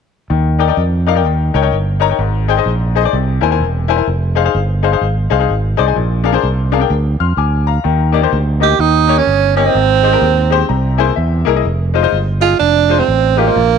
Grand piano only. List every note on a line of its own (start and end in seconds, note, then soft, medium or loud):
0.30 1.03 D#3 medium
0.59 0.64 D#4 medium
0.59 0.65 A#4 medium
0.59 0.65 D5 medium
0.59 0.65 G5 medium
0.67 0.80 D#4 medium
0.67 0.80 A#4 medium
0.67 0.81 D5 medium
0.67 0.81 G5 medium
1.07 1.12 D#4 medium
1.07 1.12 A#4 medium
1.07 1.12 D5 medium
1.07 1.13 F5 medium
1.15 1.24 D#4 medium
1.15 1.24 A#4 medium
1.15 1.25 D5 medium
1.15 1.25 G5 medium
1.25 1.97 D#3 medium
1.54 1.59 D#4 medium
1.54 1.59 A#4 medium
1.54 1.60 C#5 medium
1.54 1.60 G5 medium
1.62 1.74 D#4 medium
1.62 1.74 A#4 medium
1.62 1.75 C#5 medium
1.62 1.75 G5 medium
2.00 2.06 D#4 medium
2.00 2.06 A#4 medium
2.00 2.06 C#5 medium
2.00 2.07 A#5 medium
2.09 2.18 D#4 medium
2.09 2.18 A#4 medium
2.09 2.19 C#5 medium
2.09 2.19 G5 medium
2.19 2.92 G#2 medium
2.48 2.53 D#4 medium
2.48 2.54 G#4 medium
2.48 2.54 C5 medium
2.48 2.54 G5 medium
2.57 2.69 D#4 medium
2.57 2.69 G#4 medium
2.57 2.70 C5 medium
2.57 2.70 D#5 medium
2.95 3.01 D#4 medium
2.95 3.01 G#4 medium
2.95 3.01 C5 medium
2.95 3.01 D#5 medium
3.03 3.12 D#4 medium
3.03 3.13 G#4 medium
3.03 3.13 C5 medium
3.03 3.13 D5 medium
3.13 3.86 C3 medium
3.41 3.47 E4 medium
3.41 3.47 A#4 medium
3.41 3.48 C5 medium
3.41 3.48 G#5 medium
3.50 3.63 E4 medium
3.50 3.63 A#4 medium
3.50 3.63 C5 medium
3.50 3.63 G#5 medium
3.88 3.94 E4 medium
3.88 3.95 A#4 medium
3.88 3.95 C5 medium
3.88 3.95 G#5 medium
3.96 4.06 E4 medium
3.96 4.06 A#4 medium
3.96 4.06 C5 medium
3.96 4.07 G#5 medium
4.35 4.41 D#4 medium
4.35 4.42 G#4 medium
4.35 4.42 C5 medium
4.35 4.42 F5 medium
4.44 4.56 D#4 medium
4.44 4.57 G#4 medium
4.44 4.57 C5 medium
4.44 4.58 F5 medium
4.83 4.89 D#4 medium
4.83 4.89 G#4 medium
4.83 4.89 C5 medium
4.83 4.89 F5 medium
4.92 5.04 D#4 medium
4.92 5.04 G#4 medium
4.92 5.05 C5 medium
4.92 5.05 F5 medium
5.30 5.36 D#4 medium
5.30 5.36 G#4 medium
5.30 5.36 C5 medium
5.30 5.37 F5 medium
5.39 5.51 D#4 medium
5.39 5.52 G#4 medium
5.39 5.52 C5 medium
5.39 5.52 F5 medium
5.77 5.83 D#4 medium
5.77 5.83 G#4 medium
5.77 5.83 C5 medium
5.77 5.84 D5 medium
5.86 5.95 D#4 medium
5.86 5.95 G#4 medium
5.86 5.96 C5 medium
5.86 5.96 G#5 medium
5.95 6.68 A#2 medium
6.24 6.30 D4 medium
6.24 6.30 G#4 medium
6.24 6.30 A#4 medium
6.24 6.31 F5 medium
6.32 6.45 D4 medium
6.32 6.45 G#4 medium
6.32 6.46 A#4 medium
6.32 6.46 C5 medium
6.72 6.77 D4 medium
6.72 6.78 G#4 medium
6.72 6.78 A#4 medium
6.72 6.78 F5 medium
6.79 6.92 D4 medium
6.79 6.93 G#4 medium
6.79 6.93 A#4 medium
6.79 6.93 G5 medium
7.20 7.37 C6 soft
7.20 7.37 F6 medium
7.38 7.66 G#5 soft
7.38 7.66 D6 medium
7.67 8.13 F5 medium
7.67 8.12 A#5 medium
7.84 8.58 D#3 medium
8.12 8.19 A#3 medium
8.12 8.19 D#4 medium
8.12 8.19 G4 medium
8.12 8.20 D5 medium
8.22 8.34 A#3 medium
8.22 8.35 D#4 medium
8.22 8.35 G4 medium
8.22 8.35 C5 medium
8.60 8.72 A#3 medium
8.60 8.72 D#4 medium
8.60 8.72 G4 medium
8.60 8.73 D#5 medium
8.77 9.52 D#3 medium
9.07 9.19 A#3 medium
9.07 9.19 D#4 medium
9.07 9.20 G4 medium
9.07 9.20 C#5 medium
9.56 9.62 A#3 medium
9.56 9.62 D#4 medium
9.56 9.62 G4 medium
9.56 9.62 C#5 medium
9.64 9.74 A#3 medium
9.64 9.74 D#4 soft
9.64 9.74 G4 soft
9.64 9.75 D#5 medium
9.74 10.48 G#2 medium
10.03 10.09 G#3 medium
10.03 10.09 D#4 medium
10.03 10.09 G4 medium
10.03 10.10 C5 medium
10.11 10.24 G#3 medium
10.11 10.25 D#4 medium
10.11 10.25 G4 medium
10.11 10.25 A#4 medium
10.50 10.62 G#3 medium
10.50 10.62 D#4 medium
10.50 10.63 G4 medium
10.50 10.63 C5 loud
10.50 10.68 G5 medium
10.69 11.43 C3 medium
10.69 10.97 A#5 medium
10.98 11.09 A#3 medium
10.98 11.10 E4 medium
10.98 11.10 G#4 medium
10.98 11.10 C5 medium
10.98 11.15 G#5 medium
11.16 11.45 E5 medium
11.45 11.51 A#3 medium
11.45 11.52 E4 medium
11.45 11.52 G#4 medium
11.45 11.53 A#4 medium
11.45 11.55 D#5 medium
11.54 11.64 A#3 medium
11.54 11.64 E4 medium
11.54 11.65 G#4 medium
11.54 11.65 D#5 medium
11.94 12.00 G#3 medium
11.94 12.00 D#4 medium
11.94 12.00 F4 medium
11.94 12.00 C5 medium
12.02 12.15 G#3 medium
12.02 12.15 D#4 medium
12.02 12.15 F4 medium
12.02 12.16 C5 medium
12.40 12.52 G#3 medium
12.40 12.52 D#4 medium
12.40 12.53 F4 medium
12.40 12.53 G#4 medium
12.89 13.00 G#3 medium
12.89 13.01 D#4 medium
12.89 13.01 F4 medium
12.89 13.01 C5 medium
13.36 13.43 G#3 medium
13.36 13.43 D#4 medium
13.36 13.43 F4 medium
13.36 13.43 G4 medium
13.45 13.55 G#3 medium
13.45 13.55 D#4 soft
13.45 13.55 F4 medium
13.45 13.56 C5 medium
13.56 13.78 A#2 medium